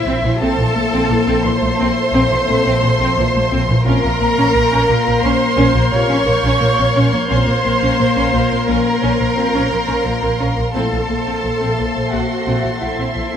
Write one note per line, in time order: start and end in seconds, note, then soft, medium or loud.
0.00 0.73 A#3 soft
0.00 0.40 E4 medium
0.00 1.74 E4 soft
0.00 0.35 C5 medium
0.00 0.40 C5 medium
0.00 0.40 E5 medium
0.00 1.74 E5 soft
0.00 0.36 C6 medium
0.00 0.40 C6 medium
0.05 0.12 A#1 medium
0.05 0.39 A#2 medium
0.05 0.22 C4 medium
0.23 0.30 A#1 medium
0.23 0.30 E3 medium
0.40 0.47 A#1 medium
0.40 1.43 A#2 medium
0.40 0.56 C4 medium
0.40 0.64 C4 medium
0.40 1.43 A4 medium
0.40 3.81 A4 medium
0.40 0.64 A4 medium
0.40 3.81 C5 medium
0.40 3.81 E5 medium
0.40 1.41 A5 medium
0.40 3.81 A5 medium
0.40 3.81 C6 medium
0.58 0.65 A#1 medium
0.58 0.65 E3 soft
0.74 0.82 A#1 medium
0.74 0.81 A3 medium
0.74 1.08 A#3 medium
0.92 0.99 A#1 medium
0.92 1.08 C4 medium
1.09 1.16 A#1 medium
1.09 1.16 E3 medium
1.09 1.78 A#3 medium
1.26 1.33 A#1 medium
1.26 1.42 C4 medium
1.44 1.51 A#1 medium
1.44 2.12 A#2 medium
1.44 1.51 E3 medium
1.44 3.85 C5 loud
1.44 3.85 C6 medium
1.61 1.68 A#1 medium
1.61 1.68 A3 medium
1.79 1.86 A#1 medium
1.79 4.18 A#3 medium
1.79 1.94 C4 medium
2.13 2.20 A#1 medium
2.13 2.46 A#2 medium
2.13 2.29 C4 medium
2.30 2.37 A#1 medium
2.30 2.37 E3 medium
2.47 2.55 A#1 medium
2.47 2.81 A#2 medium
2.47 2.54 A3 medium
2.47 2.71 C4 medium
2.47 2.71 A4 medium
2.65 2.72 A#1 medium
2.65 2.80 C4 medium
2.82 2.89 A#1 medium
2.82 3.15 A#2 medium
2.82 2.89 E3 medium
2.99 3.06 A#1 medium
2.99 3.15 C4 medium
3.17 3.24 A#1 medium
3.17 3.49 A#2 medium
3.17 3.23 E3 medium
3.34 3.40 A#1 medium
3.34 3.41 A3 medium
3.51 3.58 A#1 medium
3.51 3.84 A#2 medium
3.51 3.66 C4 medium
3.68 3.75 A#1 medium
3.68 3.75 E3 medium
3.83 3.92 A#1 medium
3.83 4.88 A#2 medium
3.83 4.09 C4 medium
3.83 4.01 C#4 medium
3.83 4.09 F4 medium
3.83 7.25 A#4 medium
3.83 5.23 A#4 loud
3.83 7.26 A#4 medium
3.83 7.28 F5 medium
3.83 7.28 A#5 medium
3.83 5.23 A#5 loud
3.83 7.26 C6 medium
3.83 10.35 F6 medium
4.03 4.10 A#1 medium
4.03 4.09 A#3 medium
4.20 4.27 A#1 medium
4.20 4.53 A#3 medium
4.20 4.27 C4 soft
4.37 4.44 A#1 medium
4.37 4.53 C#4 medium
4.54 4.61 A#1 medium
4.54 4.61 A#3 medium
4.54 5.22 A#3 medium
4.54 10.36 G6 medium
4.71 4.79 A#1 medium
4.71 4.87 C#4 medium
4.88 4.96 A#1 medium
4.88 5.56 A#2 medium
4.88 4.95 A#3 medium
5.05 5.12 A#1 medium
5.05 5.12 C4 soft
5.23 5.30 A#1 medium
5.23 7.62 A#3 medium
5.23 5.39 C#4 medium
5.23 5.92 C5 medium
5.23 5.92 C6 medium
5.23 10.36 G#6 medium
5.57 5.64 A#1 medium
5.57 5.91 A#2 medium
5.57 5.73 C#4 medium
5.74 5.81 A#1 medium
5.74 5.82 A#3 medium
5.91 5.98 A#1 medium
5.91 6.25 A#2 medium
5.91 6.16 C3 medium
5.91 5.99 C4 medium
5.91 6.16 F4 medium
5.91 7.27 C#5 loud
5.91 7.30 C#6 medium
6.09 6.16 A#1 medium
6.09 6.25 C#4 medium
6.26 6.33 A#1 medium
6.26 6.59 A#2 medium
6.26 6.33 A#3 medium
6.26 8.29 A#4 soft
6.43 6.50 A#1 medium
6.43 6.59 C#4 medium
6.60 6.67 A#1 medium
6.60 6.94 A#2 medium
6.60 6.67 A#3 medium
6.78 6.85 A#1 medium
6.78 6.85 C4 medium
6.95 7.02 A#1 medium
6.95 7.28 A#2 medium
6.95 7.11 C#4 medium
7.12 7.19 A#1 medium
7.12 7.19 A#3 medium
7.28 7.37 A#1 medium
7.28 8.31 A#2 medium
7.28 7.53 C4 medium
7.28 7.45 C#4 medium
7.28 7.53 F4 medium
7.28 10.70 A#4 medium
7.28 8.64 C5 loud
7.28 10.70 C5 medium
7.28 10.70 F5 medium
7.28 10.70 A#5 medium
7.28 8.65 C6 medium
7.28 10.70 C6 medium
7.47 7.54 A#1 medium
7.47 7.54 A#3 soft
7.64 7.71 A#1 soft
7.64 7.97 A#3 medium
7.64 7.71 C4 soft
7.81 7.88 A#1 medium
7.81 7.97 C#4 medium
7.98 8.06 A#1 soft
7.98 8.65 A#3 medium
7.98 8.06 A#3 soft
8.15 8.23 A#1 medium
8.15 8.31 C#4 medium
8.32 8.40 A#1 soft
8.32 9.00 A#2 medium
8.32 8.40 A#3 soft
8.51 8.58 A#1 medium
8.51 8.57 C4 medium
8.67 8.75 A#1 medium
8.67 10.77 A#3 medium
8.67 8.83 C#4 medium
8.67 10.74 A#4 medium
8.67 10.70 A#5 medium
9.01 9.09 A#1 medium
9.01 9.34 A#2 medium
9.01 9.18 C#4 medium
9.19 9.27 A#1 medium
9.19 9.26 A#3 soft
9.35 9.43 A#1 medium
9.35 9.69 A#2 soft
9.35 9.60 C4 medium
9.35 9.43 C4 medium
9.35 9.60 F4 medium
9.53 9.61 A#1 medium
9.53 9.69 C#4 medium
9.70 9.78 A#1 soft
9.70 10.03 A#2 medium
9.70 9.77 A#3 soft
9.87 9.95 A#1 medium
9.87 10.03 C#4 medium
10.04 10.12 A#1 soft
10.04 10.38 A#2 medium
10.04 10.11 A#3 medium
10.21 10.30 A#1 soft
10.21 10.28 C4 medium
10.39 10.47 A#1 medium
10.39 10.73 A#2 soft
10.39 10.55 C#4 medium
10.56 10.65 A#1 soft
10.56 10.63 A#3 soft
10.73 10.81 A#1 medium
10.73 11.77 A#2 medium
10.73 10.99 A3 medium
10.73 10.90 C4 medium
10.73 10.99 E4 medium
10.73 13.37 A4 medium
10.73 12.09 A4 medium
10.73 13.37 C5 medium
10.73 13.37 E5 medium
10.73 12.09 A5 medium
10.73 13.37 A5 medium
10.73 13.37 C6 medium
10.73 13.37 A6 soft
10.73 13.37 C7 soft
10.91 10.99 A#1 soft
10.91 10.98 E3 soft
11.08 11.16 A#1 soft
11.08 11.15 A3 soft
11.08 11.42 A#3 soft
11.25 11.33 A#1 medium
11.25 11.41 C4 medium
11.42 11.51 A#1 soft
11.42 11.49 E3 soft
11.42 12.11 A#3 soft
11.59 11.68 A#1 medium
11.59 11.76 C4 medium
11.76 11.86 A#1 soft
11.76 12.45 A#2 medium
11.76 11.83 E3 soft
11.94 12.02 A#1 soft
11.94 12.01 A3 soft
12.11 12.20 A#1 medium
12.11 13.37 A#3 soft
12.11 12.28 C4 soft
12.11 12.81 F#4 medium
12.11 12.81 F#5 medium
12.46 12.54 A#1 soft
12.46 12.80 A#2 soft
12.46 12.62 C4 soft
12.64 12.72 A#1 soft
12.64 12.71 E3 soft
12.81 12.89 A#1 soft
12.81 13.15 A#2 soft
12.81 12.88 A3 soft
12.81 13.37 E4 soft
12.81 13.05 E4 soft
12.81 13.05 A4 soft
12.81 13.37 E5 soft
12.81 13.37 F#5 soft
12.99 13.06 A#1 soft
12.99 13.15 C4 soft
13.16 13.23 A#1 soft
13.16 13.37 A#2 soft
13.16 13.23 E3 soft
13.33 13.37 C4 soft